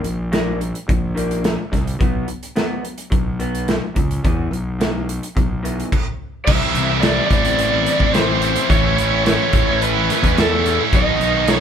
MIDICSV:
0, 0, Header, 1, 7, 480
1, 0, Start_track
1, 0, Tempo, 557103
1, 1732, Time_signature, 4, 2, 24, 8
1, 9995, End_track
2, 0, Start_track
2, 0, Title_t, "Lead electric guitar"
2, 0, Program_c, 0, 29
2, 5557, Note_on_c, 0, 76, 108
2, 6014, Note_off_c, 0, 76, 0
2, 6038, Note_on_c, 0, 74, 104
2, 6255, Note_off_c, 0, 74, 0
2, 6266, Note_on_c, 0, 74, 92
2, 6969, Note_off_c, 0, 74, 0
2, 7006, Note_on_c, 0, 72, 95
2, 7494, Note_off_c, 0, 72, 0
2, 7497, Note_on_c, 0, 73, 106
2, 7965, Note_off_c, 0, 73, 0
2, 7976, Note_on_c, 0, 73, 96
2, 8463, Note_off_c, 0, 73, 0
2, 8467, Note_on_c, 0, 71, 99
2, 8956, Note_off_c, 0, 71, 0
2, 8956, Note_on_c, 0, 69, 94
2, 9281, Note_off_c, 0, 69, 0
2, 9434, Note_on_c, 0, 75, 108
2, 9901, Note_on_c, 0, 73, 105
2, 9917, Note_off_c, 0, 75, 0
2, 9995, Note_off_c, 0, 73, 0
2, 9995, End_track
3, 0, Start_track
3, 0, Title_t, "Distorted electric guitar"
3, 0, Program_c, 1, 30
3, 6887, Note_on_c, 1, 64, 79
3, 6897, Note_on_c, 1, 60, 69
3, 6914, Note_on_c, 1, 55, 60
3, 7007, Note_off_c, 1, 55, 0
3, 7010, Note_off_c, 1, 60, 0
3, 7023, Note_off_c, 1, 64, 0
3, 8814, Note_on_c, 1, 64, 82
3, 8827, Note_on_c, 1, 61, 72
3, 8842, Note_on_c, 1, 57, 64
3, 8938, Note_off_c, 1, 57, 0
3, 8946, Note_off_c, 1, 61, 0
3, 8950, Note_off_c, 1, 64, 0
3, 9995, End_track
4, 0, Start_track
4, 0, Title_t, "Overdriven electric guitar"
4, 0, Program_c, 2, 29
4, 5590, Note_on_c, 2, 48, 87
4, 5591, Note_on_c, 2, 52, 92
4, 5598, Note_on_c, 2, 55, 106
4, 5604, Note_on_c, 2, 60, 106
4, 5604, Note_on_c, 2, 64, 106
4, 5706, Note_off_c, 2, 64, 0
4, 5709, Note_on_c, 2, 64, 80
4, 5716, Note_off_c, 2, 60, 0
4, 5726, Note_off_c, 2, 55, 0
4, 5726, Note_on_c, 2, 60, 70
4, 5736, Note_on_c, 2, 55, 71
4, 5817, Note_off_c, 2, 52, 0
4, 5819, Note_off_c, 2, 55, 0
4, 5821, Note_on_c, 2, 52, 67
4, 5829, Note_on_c, 2, 55, 70
4, 5833, Note_off_c, 2, 60, 0
4, 5843, Note_on_c, 2, 60, 72
4, 5850, Note_off_c, 2, 64, 0
4, 5853, Note_on_c, 2, 64, 84
4, 5941, Note_off_c, 2, 64, 0
4, 5944, Note_on_c, 2, 64, 68
4, 5945, Note_off_c, 2, 48, 0
4, 5945, Note_off_c, 2, 60, 0
4, 5955, Note_on_c, 2, 60, 66
4, 5960, Note_off_c, 2, 55, 0
4, 5970, Note_on_c, 2, 55, 63
4, 6050, Note_on_c, 2, 48, 79
4, 6056, Note_off_c, 2, 55, 0
4, 6059, Note_off_c, 2, 60, 0
4, 6062, Note_off_c, 2, 52, 0
4, 6065, Note_on_c, 2, 52, 87
4, 6067, Note_on_c, 2, 55, 80
4, 6069, Note_on_c, 2, 60, 95
4, 6076, Note_off_c, 2, 64, 0
4, 6079, Note_on_c, 2, 64, 92
4, 6292, Note_off_c, 2, 52, 0
4, 6292, Note_off_c, 2, 55, 0
4, 6295, Note_on_c, 2, 52, 81
4, 6302, Note_on_c, 2, 55, 78
4, 6306, Note_off_c, 2, 60, 0
4, 6315, Note_off_c, 2, 64, 0
4, 6316, Note_on_c, 2, 60, 75
4, 6318, Note_on_c, 2, 64, 89
4, 6404, Note_off_c, 2, 64, 0
4, 6415, Note_on_c, 2, 64, 81
4, 6419, Note_off_c, 2, 60, 0
4, 6429, Note_on_c, 2, 60, 72
4, 6432, Note_off_c, 2, 55, 0
4, 6442, Note_on_c, 2, 55, 52
4, 6535, Note_off_c, 2, 48, 0
4, 6638, Note_off_c, 2, 64, 0
4, 6648, Note_on_c, 2, 64, 65
4, 6658, Note_off_c, 2, 52, 0
4, 6660, Note_off_c, 2, 60, 0
4, 6670, Note_off_c, 2, 55, 0
4, 6670, Note_on_c, 2, 60, 64
4, 6681, Note_on_c, 2, 55, 63
4, 6757, Note_off_c, 2, 55, 0
4, 6762, Note_on_c, 2, 52, 75
4, 6763, Note_off_c, 2, 60, 0
4, 6767, Note_on_c, 2, 55, 71
4, 6771, Note_off_c, 2, 64, 0
4, 6774, Note_on_c, 2, 60, 82
4, 6781, Note_on_c, 2, 64, 80
4, 6996, Note_on_c, 2, 48, 93
4, 6999, Note_off_c, 2, 52, 0
4, 7006, Note_off_c, 2, 55, 0
4, 7009, Note_on_c, 2, 52, 97
4, 7010, Note_off_c, 2, 60, 0
4, 7012, Note_off_c, 2, 64, 0
4, 7016, Note_on_c, 2, 55, 93
4, 7020, Note_on_c, 2, 60, 91
4, 7022, Note_on_c, 2, 64, 107
4, 7232, Note_off_c, 2, 52, 0
4, 7242, Note_on_c, 2, 52, 69
4, 7250, Note_off_c, 2, 55, 0
4, 7251, Note_off_c, 2, 60, 0
4, 7260, Note_on_c, 2, 55, 75
4, 7262, Note_on_c, 2, 60, 82
4, 7265, Note_off_c, 2, 64, 0
4, 7275, Note_on_c, 2, 64, 86
4, 7355, Note_off_c, 2, 64, 0
4, 7365, Note_on_c, 2, 64, 77
4, 7368, Note_off_c, 2, 60, 0
4, 7379, Note_off_c, 2, 55, 0
4, 7379, Note_on_c, 2, 60, 64
4, 7390, Note_on_c, 2, 55, 57
4, 7474, Note_off_c, 2, 48, 0
4, 7477, Note_off_c, 2, 52, 0
4, 7477, Note_on_c, 2, 45, 81
4, 7478, Note_off_c, 2, 64, 0
4, 7485, Note_off_c, 2, 60, 0
4, 7489, Note_on_c, 2, 52, 101
4, 7490, Note_off_c, 2, 55, 0
4, 7494, Note_on_c, 2, 57, 98
4, 7505, Note_on_c, 2, 61, 85
4, 7505, Note_on_c, 2, 64, 100
4, 7587, Note_off_c, 2, 64, 0
4, 7597, Note_on_c, 2, 64, 79
4, 7600, Note_off_c, 2, 61, 0
4, 7607, Note_off_c, 2, 57, 0
4, 7610, Note_on_c, 2, 61, 71
4, 7617, Note_on_c, 2, 57, 57
4, 7711, Note_off_c, 2, 52, 0
4, 7719, Note_off_c, 2, 57, 0
4, 7721, Note_on_c, 2, 52, 71
4, 7728, Note_off_c, 2, 61, 0
4, 7730, Note_on_c, 2, 57, 72
4, 7736, Note_off_c, 2, 64, 0
4, 7739, Note_on_c, 2, 61, 75
4, 7746, Note_on_c, 2, 64, 79
4, 7828, Note_off_c, 2, 64, 0
4, 7838, Note_on_c, 2, 64, 70
4, 7842, Note_off_c, 2, 61, 0
4, 7848, Note_off_c, 2, 45, 0
4, 7852, Note_off_c, 2, 57, 0
4, 7852, Note_on_c, 2, 61, 65
4, 7863, Note_on_c, 2, 57, 59
4, 7958, Note_off_c, 2, 52, 0
4, 7964, Note_on_c, 2, 45, 80
4, 7966, Note_off_c, 2, 57, 0
4, 7969, Note_on_c, 2, 52, 93
4, 7970, Note_off_c, 2, 61, 0
4, 7977, Note_on_c, 2, 57, 85
4, 7978, Note_off_c, 2, 64, 0
4, 7980, Note_on_c, 2, 61, 91
4, 7989, Note_on_c, 2, 64, 81
4, 8198, Note_off_c, 2, 52, 0
4, 8209, Note_on_c, 2, 52, 69
4, 8211, Note_off_c, 2, 57, 0
4, 8218, Note_off_c, 2, 61, 0
4, 8222, Note_on_c, 2, 57, 85
4, 8223, Note_off_c, 2, 64, 0
4, 8228, Note_on_c, 2, 61, 86
4, 8234, Note_on_c, 2, 64, 83
4, 8327, Note_off_c, 2, 64, 0
4, 8337, Note_on_c, 2, 64, 76
4, 8341, Note_off_c, 2, 61, 0
4, 8351, Note_on_c, 2, 61, 65
4, 8354, Note_off_c, 2, 57, 0
4, 8365, Note_on_c, 2, 57, 62
4, 8450, Note_off_c, 2, 45, 0
4, 8565, Note_off_c, 2, 64, 0
4, 8573, Note_off_c, 2, 52, 0
4, 8576, Note_on_c, 2, 64, 76
4, 8581, Note_off_c, 2, 61, 0
4, 8592, Note_on_c, 2, 61, 72
4, 8595, Note_off_c, 2, 57, 0
4, 8605, Note_on_c, 2, 57, 59
4, 8688, Note_on_c, 2, 52, 78
4, 8689, Note_off_c, 2, 57, 0
4, 8695, Note_off_c, 2, 61, 0
4, 8699, Note_on_c, 2, 57, 86
4, 8702, Note_off_c, 2, 64, 0
4, 8705, Note_on_c, 2, 61, 78
4, 8712, Note_on_c, 2, 64, 97
4, 8926, Note_off_c, 2, 52, 0
4, 8931, Note_on_c, 2, 45, 92
4, 8936, Note_off_c, 2, 57, 0
4, 8936, Note_on_c, 2, 52, 98
4, 8942, Note_off_c, 2, 61, 0
4, 8945, Note_off_c, 2, 64, 0
4, 8946, Note_on_c, 2, 57, 101
4, 8952, Note_on_c, 2, 61, 108
4, 8955, Note_on_c, 2, 64, 102
4, 9154, Note_off_c, 2, 52, 0
4, 9165, Note_off_c, 2, 57, 0
4, 9165, Note_on_c, 2, 52, 66
4, 9172, Note_off_c, 2, 61, 0
4, 9175, Note_on_c, 2, 57, 77
4, 9182, Note_on_c, 2, 61, 83
4, 9185, Note_off_c, 2, 64, 0
4, 9196, Note_on_c, 2, 64, 86
4, 9277, Note_off_c, 2, 64, 0
4, 9287, Note_on_c, 2, 64, 75
4, 9294, Note_off_c, 2, 61, 0
4, 9304, Note_off_c, 2, 57, 0
4, 9304, Note_on_c, 2, 61, 71
4, 9315, Note_on_c, 2, 57, 57
4, 9396, Note_off_c, 2, 52, 0
4, 9397, Note_off_c, 2, 64, 0
4, 9399, Note_off_c, 2, 45, 0
4, 9403, Note_on_c, 2, 47, 89
4, 9406, Note_off_c, 2, 61, 0
4, 9411, Note_off_c, 2, 57, 0
4, 9414, Note_on_c, 2, 51, 88
4, 9422, Note_on_c, 2, 54, 93
4, 9422, Note_on_c, 2, 59, 92
4, 9425, Note_on_c, 2, 63, 101
4, 9515, Note_off_c, 2, 63, 0
4, 9519, Note_off_c, 2, 59, 0
4, 9519, Note_on_c, 2, 63, 70
4, 9530, Note_on_c, 2, 59, 73
4, 9534, Note_off_c, 2, 54, 0
4, 9544, Note_on_c, 2, 54, 66
4, 9624, Note_off_c, 2, 51, 0
4, 9634, Note_on_c, 2, 51, 75
4, 9635, Note_off_c, 2, 54, 0
4, 9641, Note_off_c, 2, 59, 0
4, 9646, Note_on_c, 2, 54, 78
4, 9652, Note_on_c, 2, 59, 72
4, 9658, Note_off_c, 2, 63, 0
4, 9662, Note_on_c, 2, 63, 84
4, 9745, Note_off_c, 2, 63, 0
4, 9749, Note_on_c, 2, 63, 76
4, 9755, Note_off_c, 2, 59, 0
4, 9765, Note_on_c, 2, 59, 67
4, 9767, Note_off_c, 2, 54, 0
4, 9768, Note_off_c, 2, 47, 0
4, 9777, Note_on_c, 2, 54, 55
4, 9883, Note_off_c, 2, 51, 0
4, 9889, Note_off_c, 2, 54, 0
4, 9892, Note_on_c, 2, 47, 88
4, 9894, Note_off_c, 2, 59, 0
4, 9894, Note_on_c, 2, 51, 87
4, 9899, Note_on_c, 2, 54, 95
4, 9904, Note_on_c, 2, 59, 89
4, 9910, Note_off_c, 2, 63, 0
4, 9914, Note_on_c, 2, 63, 81
4, 9995, Note_off_c, 2, 47, 0
4, 9995, Note_off_c, 2, 51, 0
4, 9995, Note_off_c, 2, 54, 0
4, 9995, Note_off_c, 2, 59, 0
4, 9995, Note_off_c, 2, 63, 0
4, 9995, End_track
5, 0, Start_track
5, 0, Title_t, "Clean electric guitar"
5, 0, Program_c, 3, 27
5, 34, Note_on_c, 3, 51, 63
5, 40, Note_on_c, 3, 55, 76
5, 258, Note_off_c, 3, 51, 0
5, 261, Note_off_c, 3, 55, 0
5, 275, Note_on_c, 3, 51, 87
5, 276, Note_on_c, 3, 58, 99
5, 277, Note_on_c, 3, 55, 79
5, 508, Note_off_c, 3, 51, 0
5, 509, Note_off_c, 3, 55, 0
5, 509, Note_off_c, 3, 58, 0
5, 521, Note_on_c, 3, 51, 61
5, 525, Note_on_c, 3, 55, 76
5, 742, Note_off_c, 3, 51, 0
5, 744, Note_off_c, 3, 55, 0
5, 756, Note_on_c, 3, 55, 80
5, 758, Note_on_c, 3, 51, 68
5, 980, Note_off_c, 3, 51, 0
5, 980, Note_off_c, 3, 55, 0
5, 989, Note_on_c, 3, 51, 75
5, 997, Note_on_c, 3, 55, 78
5, 1002, Note_on_c, 3, 58, 86
5, 1222, Note_off_c, 3, 51, 0
5, 1224, Note_off_c, 3, 55, 0
5, 1232, Note_off_c, 3, 58, 0
5, 1233, Note_on_c, 3, 51, 70
5, 1234, Note_on_c, 3, 55, 68
5, 1458, Note_off_c, 3, 51, 0
5, 1459, Note_off_c, 3, 55, 0
5, 1480, Note_on_c, 3, 51, 57
5, 1481, Note_on_c, 3, 55, 79
5, 1702, Note_off_c, 3, 51, 0
5, 1703, Note_off_c, 3, 55, 0
5, 1715, Note_on_c, 3, 47, 84
5, 1722, Note_on_c, 3, 54, 98
5, 1723, Note_on_c, 3, 59, 96
5, 1944, Note_off_c, 3, 47, 0
5, 1950, Note_off_c, 3, 54, 0
5, 1953, Note_off_c, 3, 59, 0
5, 1955, Note_on_c, 3, 47, 66
5, 1960, Note_on_c, 3, 54, 71
5, 2180, Note_off_c, 3, 47, 0
5, 2182, Note_off_c, 3, 54, 0
5, 2203, Note_on_c, 3, 47, 77
5, 2206, Note_on_c, 3, 54, 91
5, 2210, Note_on_c, 3, 59, 97
5, 2428, Note_off_c, 3, 47, 0
5, 2431, Note_off_c, 3, 54, 0
5, 2437, Note_off_c, 3, 59, 0
5, 2438, Note_on_c, 3, 47, 63
5, 2442, Note_on_c, 3, 54, 66
5, 2662, Note_off_c, 3, 47, 0
5, 2664, Note_off_c, 3, 54, 0
5, 2675, Note_on_c, 3, 47, 70
5, 2680, Note_on_c, 3, 54, 88
5, 2901, Note_off_c, 3, 47, 0
5, 2903, Note_off_c, 3, 54, 0
5, 2925, Note_on_c, 3, 47, 75
5, 2928, Note_on_c, 3, 54, 80
5, 2933, Note_on_c, 3, 59, 100
5, 3156, Note_off_c, 3, 47, 0
5, 3157, Note_off_c, 3, 54, 0
5, 3160, Note_off_c, 3, 59, 0
5, 3171, Note_on_c, 3, 47, 64
5, 3175, Note_on_c, 3, 54, 66
5, 3389, Note_off_c, 3, 47, 0
5, 3391, Note_off_c, 3, 54, 0
5, 3406, Note_on_c, 3, 47, 67
5, 3410, Note_on_c, 3, 54, 71
5, 3627, Note_off_c, 3, 47, 0
5, 3629, Note_off_c, 3, 54, 0
5, 3651, Note_on_c, 3, 40, 86
5, 3655, Note_on_c, 3, 52, 102
5, 3656, Note_on_c, 3, 47, 85
5, 3880, Note_off_c, 3, 40, 0
5, 3882, Note_off_c, 3, 47, 0
5, 3882, Note_off_c, 3, 52, 0
5, 3894, Note_on_c, 3, 40, 68
5, 3899, Note_on_c, 3, 47, 61
5, 4112, Note_off_c, 3, 40, 0
5, 4114, Note_off_c, 3, 47, 0
5, 4129, Note_on_c, 3, 40, 89
5, 4136, Note_on_c, 3, 47, 77
5, 4140, Note_on_c, 3, 52, 92
5, 4359, Note_off_c, 3, 40, 0
5, 4363, Note_off_c, 3, 47, 0
5, 4364, Note_off_c, 3, 52, 0
5, 4372, Note_on_c, 3, 40, 65
5, 4377, Note_on_c, 3, 47, 64
5, 4591, Note_off_c, 3, 40, 0
5, 4594, Note_off_c, 3, 47, 0
5, 4616, Note_on_c, 3, 40, 72
5, 4622, Note_on_c, 3, 47, 81
5, 4833, Note_off_c, 3, 40, 0
5, 4836, Note_off_c, 3, 47, 0
5, 4850, Note_on_c, 3, 40, 73
5, 4854, Note_on_c, 3, 47, 90
5, 4861, Note_on_c, 3, 52, 80
5, 5080, Note_off_c, 3, 40, 0
5, 5082, Note_off_c, 3, 47, 0
5, 5086, Note_off_c, 3, 52, 0
5, 9995, End_track
6, 0, Start_track
6, 0, Title_t, "Fingered electric bass"
6, 0, Program_c, 4, 33
6, 34, Note_on_c, 4, 34, 91
6, 613, Note_off_c, 4, 34, 0
6, 766, Note_on_c, 4, 34, 94
6, 1340, Note_off_c, 4, 34, 0
6, 1485, Note_on_c, 4, 36, 79
6, 1678, Note_off_c, 4, 36, 0
6, 1729, Note_on_c, 4, 35, 99
6, 1921, Note_off_c, 4, 35, 0
6, 2688, Note_on_c, 4, 35, 95
6, 3263, Note_off_c, 4, 35, 0
6, 3417, Note_on_c, 4, 37, 77
6, 3608, Note_off_c, 4, 37, 0
6, 3659, Note_on_c, 4, 40, 96
6, 3849, Note_off_c, 4, 40, 0
6, 3886, Note_on_c, 4, 35, 97
6, 4463, Note_off_c, 4, 35, 0
6, 4625, Note_on_c, 4, 35, 86
6, 5004, Note_off_c, 4, 35, 0
6, 5577, Note_on_c, 4, 36, 109
6, 5673, Note_off_c, 4, 36, 0
6, 5811, Note_on_c, 4, 36, 84
6, 6196, Note_off_c, 4, 36, 0
6, 6295, Note_on_c, 4, 33, 80
6, 6773, Note_off_c, 4, 33, 0
6, 6886, Note_on_c, 4, 33, 92
6, 7368, Note_off_c, 4, 33, 0
6, 7490, Note_on_c, 4, 33, 117
6, 8065, Note_off_c, 4, 33, 0
6, 8213, Note_on_c, 4, 33, 92
6, 8691, Note_off_c, 4, 33, 0
6, 8810, Note_on_c, 4, 40, 96
6, 9288, Note_off_c, 4, 40, 0
6, 9417, Note_on_c, 4, 35, 109
6, 9512, Note_off_c, 4, 35, 0
6, 9648, Note_on_c, 4, 35, 95
6, 9995, Note_off_c, 4, 35, 0
6, 9995, End_track
7, 0, Start_track
7, 0, Title_t, "Drums"
7, 37, Note_on_c, 9, 42, 56
7, 123, Note_off_c, 9, 42, 0
7, 281, Note_on_c, 9, 42, 53
7, 288, Note_on_c, 9, 38, 96
7, 367, Note_off_c, 9, 42, 0
7, 374, Note_off_c, 9, 38, 0
7, 527, Note_on_c, 9, 42, 62
7, 613, Note_off_c, 9, 42, 0
7, 647, Note_on_c, 9, 42, 60
7, 733, Note_off_c, 9, 42, 0
7, 768, Note_on_c, 9, 36, 102
7, 770, Note_on_c, 9, 42, 61
7, 854, Note_off_c, 9, 36, 0
7, 856, Note_off_c, 9, 42, 0
7, 1012, Note_on_c, 9, 42, 55
7, 1098, Note_off_c, 9, 42, 0
7, 1128, Note_on_c, 9, 42, 54
7, 1214, Note_off_c, 9, 42, 0
7, 1243, Note_on_c, 9, 42, 56
7, 1250, Note_on_c, 9, 38, 100
7, 1329, Note_off_c, 9, 42, 0
7, 1336, Note_off_c, 9, 38, 0
7, 1490, Note_on_c, 9, 36, 76
7, 1494, Note_on_c, 9, 42, 55
7, 1501, Note_on_c, 9, 38, 33
7, 1576, Note_off_c, 9, 36, 0
7, 1580, Note_off_c, 9, 42, 0
7, 1587, Note_off_c, 9, 38, 0
7, 1615, Note_on_c, 9, 42, 55
7, 1701, Note_off_c, 9, 42, 0
7, 1727, Note_on_c, 9, 42, 50
7, 1729, Note_on_c, 9, 36, 103
7, 1814, Note_off_c, 9, 42, 0
7, 1815, Note_off_c, 9, 36, 0
7, 1963, Note_on_c, 9, 42, 47
7, 2049, Note_off_c, 9, 42, 0
7, 2091, Note_on_c, 9, 42, 54
7, 2177, Note_off_c, 9, 42, 0
7, 2207, Note_on_c, 9, 42, 49
7, 2214, Note_on_c, 9, 38, 96
7, 2293, Note_off_c, 9, 42, 0
7, 2300, Note_off_c, 9, 38, 0
7, 2453, Note_on_c, 9, 42, 60
7, 2539, Note_off_c, 9, 42, 0
7, 2565, Note_on_c, 9, 42, 59
7, 2651, Note_off_c, 9, 42, 0
7, 2686, Note_on_c, 9, 42, 57
7, 2688, Note_on_c, 9, 36, 103
7, 2773, Note_off_c, 9, 42, 0
7, 2774, Note_off_c, 9, 36, 0
7, 2928, Note_on_c, 9, 42, 54
7, 3014, Note_off_c, 9, 42, 0
7, 3056, Note_on_c, 9, 42, 58
7, 3142, Note_off_c, 9, 42, 0
7, 3170, Note_on_c, 9, 42, 57
7, 3177, Note_on_c, 9, 38, 104
7, 3256, Note_off_c, 9, 42, 0
7, 3263, Note_off_c, 9, 38, 0
7, 3412, Note_on_c, 9, 42, 65
7, 3415, Note_on_c, 9, 36, 76
7, 3498, Note_off_c, 9, 42, 0
7, 3501, Note_off_c, 9, 36, 0
7, 3539, Note_on_c, 9, 42, 53
7, 3626, Note_off_c, 9, 42, 0
7, 3658, Note_on_c, 9, 36, 101
7, 3659, Note_on_c, 9, 42, 61
7, 3744, Note_off_c, 9, 36, 0
7, 3745, Note_off_c, 9, 42, 0
7, 3905, Note_on_c, 9, 42, 48
7, 3992, Note_off_c, 9, 42, 0
7, 4141, Note_on_c, 9, 42, 58
7, 4148, Note_on_c, 9, 38, 101
7, 4227, Note_off_c, 9, 42, 0
7, 4234, Note_off_c, 9, 38, 0
7, 4386, Note_on_c, 9, 42, 64
7, 4472, Note_off_c, 9, 42, 0
7, 4507, Note_on_c, 9, 42, 59
7, 4593, Note_off_c, 9, 42, 0
7, 4624, Note_on_c, 9, 36, 97
7, 4625, Note_on_c, 9, 42, 57
7, 4710, Note_off_c, 9, 36, 0
7, 4711, Note_off_c, 9, 42, 0
7, 4869, Note_on_c, 9, 42, 59
7, 4955, Note_off_c, 9, 42, 0
7, 4994, Note_on_c, 9, 42, 55
7, 5080, Note_off_c, 9, 42, 0
7, 5104, Note_on_c, 9, 36, 104
7, 5106, Note_on_c, 9, 49, 86
7, 5190, Note_off_c, 9, 36, 0
7, 5192, Note_off_c, 9, 49, 0
7, 5577, Note_on_c, 9, 49, 118
7, 5580, Note_on_c, 9, 36, 109
7, 5663, Note_off_c, 9, 49, 0
7, 5666, Note_off_c, 9, 36, 0
7, 5815, Note_on_c, 9, 42, 62
7, 5902, Note_off_c, 9, 42, 0
7, 6053, Note_on_c, 9, 42, 62
7, 6060, Note_on_c, 9, 38, 101
7, 6139, Note_off_c, 9, 42, 0
7, 6146, Note_off_c, 9, 38, 0
7, 6295, Note_on_c, 9, 36, 89
7, 6295, Note_on_c, 9, 42, 72
7, 6381, Note_off_c, 9, 36, 0
7, 6382, Note_off_c, 9, 42, 0
7, 6416, Note_on_c, 9, 42, 71
7, 6503, Note_off_c, 9, 42, 0
7, 6535, Note_on_c, 9, 42, 75
7, 6621, Note_off_c, 9, 42, 0
7, 6775, Note_on_c, 9, 42, 71
7, 6861, Note_off_c, 9, 42, 0
7, 6894, Note_on_c, 9, 36, 82
7, 6980, Note_off_c, 9, 36, 0
7, 7016, Note_on_c, 9, 42, 70
7, 7023, Note_on_c, 9, 38, 109
7, 7102, Note_off_c, 9, 42, 0
7, 7109, Note_off_c, 9, 38, 0
7, 7253, Note_on_c, 9, 42, 76
7, 7339, Note_off_c, 9, 42, 0
7, 7372, Note_on_c, 9, 42, 77
7, 7458, Note_off_c, 9, 42, 0
7, 7495, Note_on_c, 9, 36, 112
7, 7501, Note_on_c, 9, 42, 75
7, 7581, Note_off_c, 9, 36, 0
7, 7587, Note_off_c, 9, 42, 0
7, 7740, Note_on_c, 9, 42, 62
7, 7826, Note_off_c, 9, 42, 0
7, 7979, Note_on_c, 9, 42, 77
7, 7986, Note_on_c, 9, 38, 93
7, 8065, Note_off_c, 9, 42, 0
7, 8072, Note_off_c, 9, 38, 0
7, 8210, Note_on_c, 9, 42, 75
7, 8215, Note_on_c, 9, 36, 91
7, 8296, Note_off_c, 9, 42, 0
7, 8301, Note_off_c, 9, 36, 0
7, 8460, Note_on_c, 9, 42, 80
7, 8546, Note_off_c, 9, 42, 0
7, 8703, Note_on_c, 9, 42, 77
7, 8710, Note_on_c, 9, 38, 32
7, 8789, Note_off_c, 9, 42, 0
7, 8796, Note_off_c, 9, 38, 0
7, 8818, Note_on_c, 9, 36, 86
7, 8821, Note_on_c, 9, 42, 74
7, 8904, Note_off_c, 9, 36, 0
7, 8907, Note_off_c, 9, 42, 0
7, 8940, Note_on_c, 9, 42, 67
7, 8947, Note_on_c, 9, 38, 111
7, 9026, Note_off_c, 9, 42, 0
7, 9033, Note_off_c, 9, 38, 0
7, 9182, Note_on_c, 9, 42, 74
7, 9268, Note_off_c, 9, 42, 0
7, 9415, Note_on_c, 9, 42, 67
7, 9416, Note_on_c, 9, 36, 109
7, 9501, Note_off_c, 9, 42, 0
7, 9502, Note_off_c, 9, 36, 0
7, 9657, Note_on_c, 9, 42, 56
7, 9743, Note_off_c, 9, 42, 0
7, 9888, Note_on_c, 9, 42, 61
7, 9895, Note_on_c, 9, 38, 98
7, 9974, Note_off_c, 9, 42, 0
7, 9981, Note_off_c, 9, 38, 0
7, 9995, End_track
0, 0, End_of_file